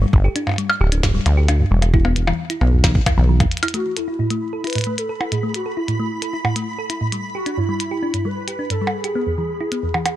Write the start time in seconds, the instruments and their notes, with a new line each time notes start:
0.02 synth arpeggio sound G3
0.13 acid bass G1, kick
0.24 synth arpeggio sound G4
0.36 synth arpeggio sound D4, closed hi-hat
0.47 synth arpeggio sound G2, percussion blips
0.49 percussion blips
0.52 percussion blips
0.54 percussion blips
0.56 synth arpeggio sound G3, closed hi-hat, percussion blips
0.70 percussion blips
0.81 acid bass D1, synth arpeggio sound G4
0.92 synth arpeggio sound D4, closed hi-hat
1.03 synth arpeggio sound G2, kick, snare, percussion blips
1.15 synth arpeggio sound G3
1.26 acid bass D2, closed hi-hat, percussion blips
1.37 synth arpeggio sound G4
1.48 synth arpeggio sound D4, closed hi-hat, percussion blips
1.60 synth arpeggio sound G2
1.71 acid bass E1, synth arpeggio sound G3
1.82 closed hi-hat, percussion blips
1.94 synth arpeggio sound E4, kick
2.05 synth arpeggio sound B3, percussion blips
2.16 synth arpeggio sound E2, closed hi-hat
2.27 synth arpeggio sound E3, percussion blips
2.50 synth arpeggio sound E4, closed hi-hat
2.61 acid bass B1, synth arpeggio sound B3, percussion blips
2.73 synth arpeggio sound E2
2.84 synth arpeggio sound E3, kick, snare, closed hi-hat, percussion blips
2.95 kick
3.06 synth arpeggio sound E2, kick, closed hi-hat, percussion blips
3.18 acid bass B1, synth arpeggio sound E3
3.29 synth arpeggio sound E3
3.40 synth arpeggio sound E2, kick, closed hi-hat, percussion blips
3.52 closed hi-hat
3.57 closed hi-hat
3.63 synth arpeggio sound E4, closed hi-hat, percussion blips
3.68 closed hi-hat
3.74 synth arpeggio sound A3, soft synth lead F#4, synth texture B5, closed hi-hat
3.96 soft synth lead E4, synth arpeggio sound A4, closed hi-hat
4.08 synth arpeggio sound E4
4.19 synth arpeggio sound A2
4.30 synth arpeggio sound A3, closed hi-hat
4.53 synth arpeggio sound A4
4.64 synth arpeggio sound E4, soft synth lead B4, closed hi-hat
4.67 closed hi-hat
4.70 closed hi-hat
4.73 closed hi-hat
4.75 synth arpeggio sound A2, closed hi-hat
4.78 closed hi-hat
4.81 closed hi-hat
4.84 synth arpeggio sound A3, closed hi-hat
4.98 soft synth lead A4, closed hi-hat
5.09 synth arpeggio sound A4
5.21 synth arpeggio sound E4, percussion blips
5.32 synth arpeggio sound A2, soft synth lead G#4, closed hi-hat
5.43 synth arpeggio sound A3
5.54 soft synth lead F#4, closed hi-hat
5.66 synth arpeggio sound A4
5.77 soft synth lead E4, synth arpeggio sound E4
5.88 synth arpeggio sound A2, closed hi-hat
6.00 synth arpeggio sound A3
6.22 synth arpeggio sound A4, closed hi-hat
6.33 synth arpeggio sound E4
6.45 synth arpeggio sound A2, percussion blips
6.56 synth arpeggio sound A3, closed hi-hat
6.79 synth arpeggio sound A4
6.90 synth arpeggio sound E4, closed hi-hat
7.01 synth arpeggio sound A2
7.12 synth arpeggio sound G3, closed hi-hat
7.35 soft synth lead F#4, synth arpeggio sound G4
7.46 synth arpeggio sound D4, closed hi-hat
7.57 synth arpeggio sound G2, soft synth lead E4
7.69 synth arpeggio sound G3
7.80 closed hi-hat
7.91 synth arpeggio sound G4
8.03 synth arpeggio sound D4
8.14 synth arpeggio sound G2, closed hi-hat
8.25 synth arpeggio sound G3, soft synth lead B4
8.48 synth arpeggio sound G4, closed hi-hat
8.59 synth arpeggio sound D4
8.70 synth arpeggio sound G2, soft synth lead A4, closed hi-hat
8.82 synth arpeggio sound G3
8.87 percussion blips
8.93 soft synth lead G#4
9.04 synth arpeggio sound G4, closed hi-hat
9.15 synth arpeggio sound B3
9.27 synth arpeggio sound E2
9.38 synth arpeggio sound E3
9.61 synth arpeggio sound E4
9.72 synth arpeggio sound B3, closed hi-hat
9.83 synth arpeggio sound E2
9.94 synth arpeggio sound E3, percussion blips
10.06 closed hi-hat, percussion blips